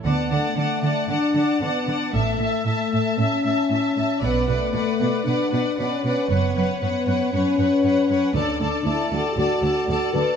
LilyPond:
<<
  \new Staff \with { instrumentName = "Violin section" } { \time 4/4 \key d \major \tempo 4 = 116 a''8 a''8 a''8 a''8 a''8 a''8 a''8 a''8 | a''8 a''8 a''8 a''8 a''8 a''8 a''8 a''8 | fis''8 fis''8 fis''8 fis''8 fis''8 fis''8 fis''8 fis''8 | fis''8 fis''8 fis''8 fis''8 fis''8 fis''8 fis''8 fis''8 |
a''8 a''8 a''8 a''8 a''8 a''8 a''8 a''8 | }
  \new Staff \with { instrumentName = "Violin section" } { \time 4/4 \key d \major fis''8 fis''8 fis''8 fis''8 fis''8 fis''8 fis''8 fis''8 | e''8 e''8 e''8 e''8 e''8 e''8 e''8 e''8 | d''8 d''8 d''8 d''8 d''8 d''8 d''8 d''8 | cis''8 cis''8 cis''8 cis''8 cis''8 cis''8 cis''8 cis''8 |
d''8 d''8 d''8 d''8 d''8 d''8 d''8 d''8 | }
  \new Staff \with { instrumentName = "Viola section" } { \time 4/4 \key d \major d''8 d''8 d''8 d''8 d''8 d''8 d''8 d''8 | e''8 e''8 e''8 e''8 e''8 e''8 e''8 e''8 | b'8 b'8 b'8 b'8 b'8 b'8 b'8 b'8 | b'8 b'8 b'8 b'8 b'8 b'8 b'8 b'8 |
a'8 a'8 a'8 a'8 a'8 a'8 a'8 a'8 | }
  \new Staff \with { instrumentName = "French horn section" } { \time 4/4 \key d \major b8 a4. d'4 b4 | a4 a4 cis'2 | b8 a4. d'4 cis'4 | b4 b4 cis'2 |
d'4 e'8 fis'16 g'16 fis'4. b'8 | }
  \new Staff \with { instrumentName = "Cello section" } { \clef bass \time 4/4 \key d \major d8 d8 d8 d8 d8 d8 d8 d8 | a,8 a,8 a,8 a,8 a,8 a,8 a,8 a,8 | b,8 b,8 b,8 b,8 b,8 b,8 b,8 b,8 | fis,8 fis,8 fis,8 fis,8 fis,8 fis,8 fis,8 fis,8 |
d,8 d,8 d,8 d,8 d,8 d,8 d,8 d,8 | }
  \new Staff \with { instrumentName = "Double bass section" } { \clef bass \time 4/4 \key d \major d,8 r2. r8 | a,,8 r2. r8 | b,,8 r2. r8 | fis,,8 r2. r8 |
d,8 r2. r8 | }
>>